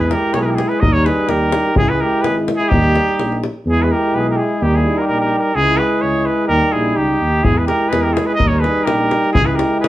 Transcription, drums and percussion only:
0.11 davul high medium
0.34 davul high medium
0.58 davul high medium
0.71 davul high soft
0.83 davul low medium
1.06 davul high medium
1.29 davul high medium
1.52 davul high medium
1.66 davul high soft
1.76 davul low loud
2.24 davul high medium
2.48 davul high medium
2.61 davul high soft
2.72 davul low medium
2.84 davul high soft
2.96 davul high medium
3.09 davul high soft
3.19 davul high medium
3.32 davul high soft
3.44 davul high medium
7.45 davul low medium
7.68 davul high medium
7.93 davul high medium
8.17 davul high medium
8.30 davul high soft
8.40 davul low medium
8.64 davul high medium
8.87 davul high medium
9.11 davul high medium
9.24 davul high soft
9.35 davul low medium
9.59 davul high medium
9.84 davul high medium

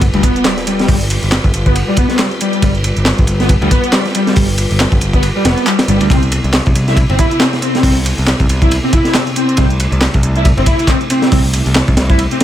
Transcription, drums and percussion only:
0.01 kick loud
0.01 closed hi-hat soft
0.01 ride medium
0.13 ride soft
0.23 kick loud
0.23 closed hi-hat medium
0.23 ride medium
0.36 closed hi-hat soft
0.45 snare loud
0.45 clap loud
0.45 closed hi-hat soft
0.45 ride loud
0.57 snare soft
0.57 closed hi-hat soft
0.67 closed hi-hat medium
0.67 ride medium
0.79 snare soft
0.79 closed hi-hat soft
0.88 kick loud
0.88 closed hi-hat soft
0.88 open hi-hat medium
1.01 closed hi-hat soft
1.10 closed hi-hat medium
1.10 ride medium
1.23 closed hi-hat soft
1.32 snare loud
1.32 clap loud
1.32 closed hi-hat soft
1.32 ride medium
1.44 kick medium
1.44 closed hi-hat soft
1.54 closed hi-hat medium
1.54 ride medium
1.66 kick medium
1.66 closed hi-hat soft
1.76 closed hi-hat soft
1.76 ride medium
1.97 kick medium
1.97 closed hi-hat medium
1.97 ride medium
2.09 snare soft
2.09 closed hi-hat soft
2.19 snare loud
2.19 clap loud
2.19 closed hi-hat soft
2.19 ride medium
2.31 closed hi-hat soft
2.41 closed hi-hat medium
2.41 ride medium
2.53 closed hi-hat soft
2.62 kick loud
2.62 closed hi-hat soft
2.62 ride medium
2.75 closed hi-hat soft
2.84 closed hi-hat medium
2.84 ride medium
2.97 closed hi-hat soft
3.05 snare loud
3.05 clap loud
3.05 closed hi-hat soft
3.05 ride loud
3.18 kick loud
3.18 closed hi-hat soft
3.27 closed hi-hat medium
3.27 ride medium
3.40 snare soft
3.40 closed hi-hat soft
3.49 kick loud
3.49 closed hi-hat soft
3.49 ride medium
3.62 ride soft
3.71 kick medium
3.71 closed hi-hat medium
3.71 ride medium
3.84 closed hi-hat soft
3.92 snare loud
3.92 clap loud
3.92 closed hi-hat soft
3.92 ride medium
4.05 snare soft
4.05 closed hi-hat soft
4.15 closed hi-hat medium
4.15 ride medium
4.27 snare soft
4.27 closed hi-hat soft
4.36 kick loud
4.36 closed hi-hat soft
4.36 open hi-hat medium
4.49 closed hi-hat soft
4.58 closed hi-hat medium
4.58 ride medium
4.71 closed hi-hat soft
4.80 snare loud
4.80 clap loud
4.80 closed hi-hat soft
4.80 ride medium
4.92 kick loud
4.92 closed hi-hat soft
5.01 closed hi-hat medium
5.01 ride medium
5.13 kick medium
5.13 closed hi-hat soft
5.23 closed hi-hat soft
5.23 ride medium
5.45 snare loud
5.45 closed hi-hat medium
5.45 ride medium
5.57 closed hi-hat soft
5.67 clap loud
5.67 closed hi-hat soft
5.67 ride medium
5.79 snare loud
5.79 closed hi-hat soft
5.79 ride medium
5.88 closed hi-hat medium
6.01 closed hi-hat soft
6.01 ride medium
6.10 kick loud
6.10 closed hi-hat soft
6.10 ride medium
6.23 closed hi-hat soft
6.32 closed hi-hat medium
6.32 ride medium
6.44 closed hi-hat soft
6.53 snare loud
6.53 clap loud
6.53 closed hi-hat soft
6.53 ride medium
6.66 kick loud
6.66 closed hi-hat soft
6.75 closed hi-hat medium
6.75 ride medium
6.88 snare soft
6.88 closed hi-hat soft
6.97 kick loud
6.97 closed hi-hat soft
6.97 ride medium
7.09 ride soft
7.19 kick loud
7.19 closed hi-hat medium
7.19 ride medium
7.31 closed hi-hat soft
7.40 snare loud
7.40 clap loud
7.40 closed hi-hat soft
7.40 ride medium
7.53 snare soft
7.53 closed hi-hat soft
7.62 closed hi-hat medium
7.62 ride medium
7.75 snare soft
7.75 closed hi-hat soft
7.83 kick loud
7.83 closed hi-hat soft
7.83 open hi-hat medium
7.97 closed hi-hat soft
8.06 closed hi-hat medium
8.06 ride medium
8.18 closed hi-hat soft
8.27 snare loud
8.27 clap loud
8.27 closed hi-hat soft
8.27 ride loud
8.40 kick loud
8.40 closed hi-hat soft
8.49 closed hi-hat medium
8.49 ride medium
8.62 kick medium
8.62 closed hi-hat soft
8.71 closed hi-hat soft
8.71 ride loud
8.93 kick medium
8.93 closed hi-hat medium
8.93 ride medium
9.05 snare soft
9.05 closed hi-hat soft
9.14 snare loud
9.14 clap loud
9.14 closed hi-hat soft
9.14 ride loud
9.27 closed hi-hat soft
9.36 closed hi-hat medium
9.36 ride medium
9.49 closed hi-hat soft
9.57 kick loud
9.57 closed hi-hat soft
9.57 ride medium
9.70 closed hi-hat soft
9.80 closed hi-hat medium
9.80 ride medium
9.92 closed hi-hat soft
10.01 snare loud
10.01 clap loud
10.01 closed hi-hat soft
10.01 ride medium
10.14 kick loud
10.14 closed hi-hat soft
10.23 closed hi-hat medium
10.36 closed hi-hat soft
10.45 kick loud
10.45 closed hi-hat soft
10.45 ride medium
10.57 ride soft
10.66 kick medium
10.66 closed hi-hat medium
10.66 ride medium
10.79 closed hi-hat soft
10.79 ride soft
10.87 kick medium
10.87 clap loud
10.87 closed hi-hat soft
10.87 ride medium
11.01 closed hi-hat soft
11.10 closed hi-hat medium
11.10 ride medium
11.22 snare medium
11.22 closed hi-hat soft
11.32 kick loud
11.32 closed hi-hat soft
11.32 open hi-hat medium
11.44 closed hi-hat soft
11.53 closed hi-hat medium
11.53 ride medium
11.66 closed hi-hat soft
11.74 snare loud
11.74 clap loud
11.74 closed hi-hat soft
11.74 ride medium
11.88 kick loud
11.88 closed hi-hat soft
11.97 snare loud
11.97 closed hi-hat medium
11.97 ride medium
12.10 kick loud
12.10 closed hi-hat soft
12.19 closed hi-hat soft
12.19 ride medium
12.31 closed hi-hat soft
12.40 closed hi-hat medium
12.40 ride medium

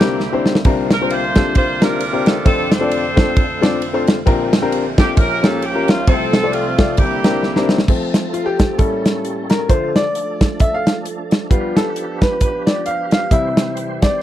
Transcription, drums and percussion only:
0.01 snare loud
0.01 ride medium
0.20 snare medium
0.46 snare medium
0.55 snare loud
0.64 kick loud
0.64 ride medium
0.91 snare loud
0.91 ride medium
1.10 ride medium
1.35 kick medium
1.35 snare loud
1.35 ride medium
1.55 kick loud
1.55 ride medium
1.82 snare loud
1.82 ride medium
2.00 ride medium
2.26 snare loud
2.26 ride medium
2.46 kick loud
2.46 ride medium
2.72 snare loud
2.72 ride medium
2.91 ride medium
3.17 kick loud
3.17 snare loud
3.17 ride medium
3.36 kick loud
3.36 ride medium
3.63 snare loud
3.63 ride medium
3.82 ride medium
4.07 snare loud
4.07 ride medium
4.27 kick loud
4.27 ride medium
4.53 snare loud
4.53 ride medium
4.72 ride medium
4.98 kick loud
4.98 snare loud
4.98 ride medium
5.17 kick loud
5.17 ride medium
5.44 snare loud
5.44 ride medium
5.62 ride medium
5.88 snare loud
5.88 ride medium
6.07 kick loud
6.07 ride medium
6.33 snare loud
6.33 ride medium
6.53 ride medium
6.78 kick loud
6.78 snare loud
6.78 ride medium
6.97 kick loud
6.97 ride medium
7.24 snare loud
7.24 ride medium
7.43 snare medium
7.56 snare medium
7.69 snare medium
7.78 snare loud
7.88 kick loud
7.88 crash medium
8.14 snare loud
8.14 closed hi-hat medium
8.34 closed hi-hat medium
8.59 kick medium
8.59 snare loud
8.59 closed hi-hat medium
8.79 kick loud
8.79 closed hi-hat medium
9.06 snare loud
9.06 closed hi-hat medium
9.25 closed hi-hat medium
9.50 snare medium
9.50 closed hi-hat medium
9.69 kick loud
9.69 closed hi-hat medium
9.96 snare loud
9.96 closed hi-hat medium
10.15 closed hi-hat medium
10.41 kick medium
10.41 snare loud
10.41 closed hi-hat medium
10.60 kick loud
10.60 closed hi-hat medium
10.87 snare loud
10.87 closed hi-hat medium
11.05 closed hi-hat medium
11.31 snare loud
11.31 closed hi-hat medium
11.51 kick loud
11.51 closed hi-hat medium
11.77 snare loud
11.77 closed hi-hat medium
11.96 closed hi-hat medium
12.21 kick medium
12.21 snare loud
12.21 closed hi-hat medium
12.41 kick loud
12.41 closed hi-hat medium
12.67 snare loud
12.67 closed hi-hat medium
12.86 closed hi-hat medium
13.11 snare loud
13.11 closed hi-hat medium
13.31 kick loud
13.31 closed hi-hat medium
13.57 snare loud
13.57 closed hi-hat medium
13.77 closed hi-hat medium
14.02 kick medium
14.02 snare loud
14.02 closed hi-hat medium

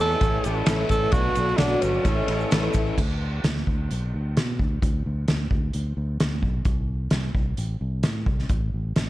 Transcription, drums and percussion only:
0.12 shaker soft
0.21 kick loud
0.21 ride medium
0.21 shaker medium
0.44 ride medium
0.44 shaker medium
0.66 snare loud
0.66 ride loud
0.66 shaker medium
0.89 kick medium
0.89 ride medium
0.89 shaker medium
1.12 kick loud
1.12 ride loud
1.12 shaker medium
1.35 ride medium
1.35 shaker medium
1.48 shaker soft
1.58 snare loud
1.58 ride loud
1.58 shaker medium
1.82 ride medium
1.82 shaker medium
1.93 shaker soft
2.05 kick medium
2.05 ride medium
2.05 shaker medium
2.28 ride medium
2.40 shaker soft
2.51 snare loud
2.51 ride loud
2.51 shaker medium
2.73 kick medium
2.73 ride medium
2.73 shaker loud
2.86 shaker soft
2.98 kick loud
2.98 crash medium
3.44 snare loud
3.44 closed hi-hat medium
3.57 snare soft
3.67 kick medium
3.91 closed hi-hat soft
4.37 snare loud
4.37 closed hi-hat medium
4.59 kick medium
4.82 kick medium
4.82 closed hi-hat medium
5.28 snare loud
5.28 closed hi-hat medium
5.51 kick medium
5.74 closed hi-hat soft
6.20 snare loud
6.20 closed hi-hat medium
6.43 kick medium
6.65 kick loud
6.65 closed hi-hat medium
7.10 snare loud
7.10 closed hi-hat medium
7.35 kick medium
7.57 closed hi-hat soft
8.03 snare loud
8.03 closed hi-hat medium
8.26 kick medium
8.39 snare soft
8.49 kick loud
8.49 closed hi-hat medium
8.96 snare loud
8.96 closed hi-hat medium

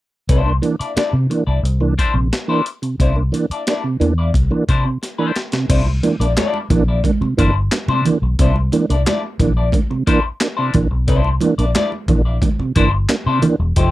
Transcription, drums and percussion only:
0.29 kick loud
0.29 closed hi-hat medium
0.63 closed hi-hat medium
0.81 closed hi-hat medium
0.97 snare loud
0.97 closed hi-hat medium
1.31 closed hi-hat medium
1.65 closed hi-hat medium
1.99 kick medium
1.99 closed hi-hat medium
2.33 snare loud
2.33 closed hi-hat medium
2.66 closed hi-hat medium
2.83 closed hi-hat soft
3.00 kick medium
3.00 closed hi-hat medium
3.34 closed hi-hat medium
3.51 closed hi-hat medium
3.67 snare loud
3.67 closed hi-hat medium
4.01 closed hi-hat medium
4.34 kick medium
4.34 closed hi-hat medium
4.69 kick medium
4.69 closed hi-hat medium
5.03 snare medium
5.03 closed hi-hat medium
5.36 snare medium
5.36 closed hi-hat medium
5.52 snare medium
5.52 closed hi-hat medium
5.70 kick loud
5.70 closed hi-hat medium
5.70 crash medium
5.70 muted conga soft
5.86 muted conga soft
6.03 closed hi-hat medium
6.03 high conga medium
6.21 closed hi-hat medium
6.37 snare loud
6.37 clap medium
6.37 closed hi-hat loud
6.37 muted conga soft
6.37 high conga medium
6.54 muted conga soft
6.70 kick loud
6.70 closed hi-hat medium
6.70 low conga medium
7.04 kick medium
7.04 closed hi-hat medium
7.04 muted conga soft
7.04 high conga medium
7.04 low conga medium
7.22 muted conga soft
7.39 kick medium
7.39 closed hi-hat medium
7.72 snare loud
7.72 clap loud
7.72 closed hi-hat medium
7.72 muted conga soft
7.88 muted conga soft
8.05 closed hi-hat medium
8.05 low conga medium
8.39 kick loud
8.39 closed hi-hat medium
8.39 muted conga soft
8.56 muted conga soft
8.72 closed hi-hat medium
8.72 high conga medium
8.90 closed hi-hat medium
9.06 snare loud
9.06 clap medium
9.06 closed hi-hat medium
9.06 muted conga soft
9.06 high conga medium
9.40 kick medium
9.40 closed hi-hat medium
9.40 low conga medium
9.72 kick medium
9.72 closed hi-hat medium
9.72 muted conga soft
9.72 high conga medium
9.72 low conga medium
9.91 muted conga soft
10.07 kick medium
10.07 closed hi-hat medium
10.41 snare loud
10.41 clap loud
10.41 closed hi-hat medium
10.74 kick medium
10.74 closed hi-hat medium
10.74 low conga medium
11.08 kick loud
11.08 closed hi-hat medium
11.08 muted conga soft
11.24 muted conga soft
11.41 closed hi-hat medium
11.41 high conga medium
11.59 closed hi-hat medium
11.75 snare loud
11.75 clap loud
11.75 closed hi-hat medium
11.75 muted conga soft
11.75 high conga medium
11.92 muted conga soft
12.08 kick loud
12.08 closed hi-hat medium
12.08 low conga medium
12.42 kick loud
12.42 closed hi-hat medium
12.42 muted conga soft
12.42 high conga medium
12.42 low conga medium
12.59 muted conga soft
12.76 kick medium
12.76 closed hi-hat medium
13.09 snare loud
13.09 clap loud
13.09 closed hi-hat medium
13.09 muted conga soft
13.42 closed hi-hat medium
13.42 low conga loud
13.76 kick medium
13.76 closed hi-hat medium
13.76 muted conga soft

